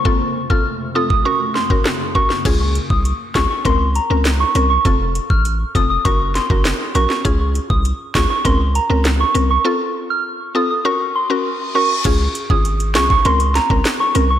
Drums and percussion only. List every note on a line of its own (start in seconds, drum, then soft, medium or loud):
0.05 kick loud
0.50 kick medium
1.10 kick medium
1.55 snare medium
1.70 kick medium
1.86 cross-stick medium
1.86 snare loud
2.15 kick medium
2.30 snare medium
2.45 kick loud
2.45 closed hi-hat medium
2.45 crash medium
2.75 closed hi-hat medium
2.90 kick medium
3.05 closed hi-hat medium
3.35 kick medium
3.35 snare loud
3.35 closed hi-hat medium
3.65 kick medium
3.65 closed hi-hat medium
3.95 closed hi-hat medium
4.25 snare loud
4.25 closed hi-hat medium
4.55 closed hi-hat medium
4.85 kick loud
4.85 closed hi-hat medium
5.15 closed hi-hat medium
5.30 kick medium
5.45 closed hi-hat medium
5.75 kick medium
5.75 closed hi-hat medium
6.05 kick medium
6.05 closed hi-hat medium
6.35 snare medium
6.35 closed hi-hat medium
6.50 kick medium
6.65 snare loud
6.65 closed hi-hat medium
6.95 closed hi-hat medium
7.10 snare medium
7.25 kick loud
7.25 closed hi-hat medium
7.55 closed hi-hat medium
7.70 kick medium
7.85 closed hi-hat medium
8.15 kick loud
8.15 snare loud
8.15 closed hi-hat medium
8.45 kick medium
8.45 closed hi-hat medium
8.75 closed hi-hat medium
9.05 snare loud
9.05 closed hi-hat medium
9.35 closed hi-hat medium
12.05 kick loud
12.05 closed hi-hat medium
12.05 crash loud
12.35 closed hi-hat medium
12.50 kick loud
12.65 closed hi-hat medium
12.80 closed hi-hat medium
12.95 snare loud
12.95 closed hi-hat medium
13.10 kick medium
13.25 closed hi-hat medium
13.40 closed hi-hat medium
13.55 snare medium
13.55 closed hi-hat medium
13.70 kick medium
13.85 cross-stick medium
13.85 snare loud
13.85 closed hi-hat medium
14.15 closed hi-hat medium